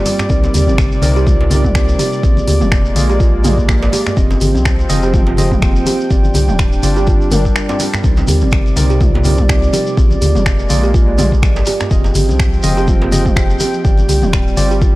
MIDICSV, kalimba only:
0, 0, Header, 1, 2, 480
1, 0, Start_track
1, 0, Key_signature, -3, "minor"
1, 0, Tempo, 483871
1, 297, Time_signature, 4, 2, 24, 8
1, 14834, End_track
2, 0, Start_track
2, 0, Title_t, "Kalimba"
2, 0, Program_c, 0, 108
2, 56, Note_on_c, 0, 55, 76
2, 185, Note_off_c, 0, 55, 0
2, 297, Note_on_c, 0, 60, 83
2, 370, Note_off_c, 0, 60, 0
2, 538, Note_on_c, 0, 67, 77
2, 611, Note_off_c, 0, 67, 0
2, 674, Note_on_c, 0, 60, 75
2, 730, Note_off_c, 0, 60, 0
2, 1153, Note_on_c, 0, 67, 104
2, 1252, Note_off_c, 0, 67, 0
2, 1258, Note_on_c, 0, 65, 80
2, 1380, Note_off_c, 0, 65, 0
2, 1499, Note_on_c, 0, 67, 77
2, 1571, Note_off_c, 0, 67, 0
2, 1634, Note_on_c, 0, 58, 76
2, 1690, Note_off_c, 0, 58, 0
2, 1977, Note_on_c, 0, 67, 103
2, 2050, Note_off_c, 0, 67, 0
2, 2219, Note_on_c, 0, 60, 84
2, 2291, Note_off_c, 0, 60, 0
2, 2456, Note_on_c, 0, 67, 77
2, 2530, Note_off_c, 0, 67, 0
2, 2594, Note_on_c, 0, 60, 78
2, 2649, Note_off_c, 0, 60, 0
2, 3071, Note_on_c, 0, 67, 104
2, 3171, Note_off_c, 0, 67, 0
2, 3177, Note_on_c, 0, 65, 84
2, 3299, Note_off_c, 0, 65, 0
2, 3417, Note_on_c, 0, 67, 76
2, 3490, Note_off_c, 0, 67, 0
2, 3552, Note_on_c, 0, 58, 78
2, 3609, Note_off_c, 0, 58, 0
2, 3897, Note_on_c, 0, 67, 100
2, 3970, Note_off_c, 0, 67, 0
2, 4138, Note_on_c, 0, 60, 85
2, 4211, Note_off_c, 0, 60, 0
2, 4376, Note_on_c, 0, 67, 77
2, 4450, Note_off_c, 0, 67, 0
2, 4514, Note_on_c, 0, 60, 76
2, 4569, Note_off_c, 0, 60, 0
2, 4994, Note_on_c, 0, 67, 105
2, 5092, Note_off_c, 0, 67, 0
2, 5098, Note_on_c, 0, 65, 82
2, 5220, Note_off_c, 0, 65, 0
2, 5338, Note_on_c, 0, 67, 79
2, 5411, Note_off_c, 0, 67, 0
2, 5475, Note_on_c, 0, 58, 75
2, 5530, Note_off_c, 0, 58, 0
2, 5819, Note_on_c, 0, 67, 104
2, 5891, Note_off_c, 0, 67, 0
2, 6058, Note_on_c, 0, 60, 86
2, 6131, Note_off_c, 0, 60, 0
2, 6298, Note_on_c, 0, 67, 80
2, 6371, Note_off_c, 0, 67, 0
2, 6434, Note_on_c, 0, 60, 76
2, 6490, Note_off_c, 0, 60, 0
2, 6911, Note_on_c, 0, 67, 108
2, 7011, Note_off_c, 0, 67, 0
2, 7019, Note_on_c, 0, 65, 83
2, 7140, Note_off_c, 0, 65, 0
2, 7257, Note_on_c, 0, 70, 101
2, 7379, Note_off_c, 0, 70, 0
2, 7392, Note_on_c, 0, 55, 78
2, 7486, Note_off_c, 0, 55, 0
2, 7634, Note_on_c, 0, 60, 77
2, 7725, Note_off_c, 0, 60, 0
2, 7737, Note_on_c, 0, 60, 80
2, 7859, Note_off_c, 0, 60, 0
2, 7978, Note_on_c, 0, 60, 81
2, 8051, Note_off_c, 0, 60, 0
2, 8216, Note_on_c, 0, 67, 79
2, 8290, Note_off_c, 0, 67, 0
2, 8353, Note_on_c, 0, 60, 75
2, 8409, Note_off_c, 0, 60, 0
2, 8832, Note_on_c, 0, 67, 106
2, 8931, Note_off_c, 0, 67, 0
2, 8936, Note_on_c, 0, 65, 82
2, 9058, Note_off_c, 0, 65, 0
2, 9071, Note_on_c, 0, 58, 78
2, 9128, Note_off_c, 0, 58, 0
2, 9176, Note_on_c, 0, 67, 78
2, 9250, Note_off_c, 0, 67, 0
2, 9658, Note_on_c, 0, 67, 104
2, 9731, Note_off_c, 0, 67, 0
2, 9896, Note_on_c, 0, 60, 88
2, 9970, Note_off_c, 0, 60, 0
2, 10135, Note_on_c, 0, 67, 78
2, 10209, Note_off_c, 0, 67, 0
2, 10271, Note_on_c, 0, 60, 77
2, 10328, Note_off_c, 0, 60, 0
2, 10749, Note_on_c, 0, 67, 103
2, 10850, Note_off_c, 0, 67, 0
2, 10854, Note_on_c, 0, 65, 86
2, 10978, Note_off_c, 0, 65, 0
2, 10991, Note_on_c, 0, 58, 80
2, 11048, Note_off_c, 0, 58, 0
2, 11093, Note_on_c, 0, 67, 78
2, 11168, Note_off_c, 0, 67, 0
2, 11575, Note_on_c, 0, 67, 103
2, 11649, Note_off_c, 0, 67, 0
2, 11816, Note_on_c, 0, 60, 85
2, 11890, Note_off_c, 0, 60, 0
2, 12057, Note_on_c, 0, 67, 78
2, 12130, Note_off_c, 0, 67, 0
2, 12191, Note_on_c, 0, 60, 76
2, 12248, Note_off_c, 0, 60, 0
2, 12671, Note_on_c, 0, 67, 107
2, 12771, Note_off_c, 0, 67, 0
2, 12776, Note_on_c, 0, 65, 86
2, 12898, Note_off_c, 0, 65, 0
2, 12910, Note_on_c, 0, 58, 80
2, 12968, Note_off_c, 0, 58, 0
2, 13016, Note_on_c, 0, 67, 77
2, 13090, Note_off_c, 0, 67, 0
2, 13496, Note_on_c, 0, 67, 108
2, 13570, Note_off_c, 0, 67, 0
2, 13736, Note_on_c, 0, 60, 83
2, 13810, Note_off_c, 0, 60, 0
2, 13976, Note_on_c, 0, 67, 78
2, 14050, Note_off_c, 0, 67, 0
2, 14112, Note_on_c, 0, 60, 78
2, 14169, Note_off_c, 0, 60, 0
2, 14592, Note_on_c, 0, 67, 102
2, 14692, Note_off_c, 0, 67, 0
2, 14696, Note_on_c, 0, 65, 83
2, 14819, Note_off_c, 0, 65, 0
2, 14834, End_track
0, 0, End_of_file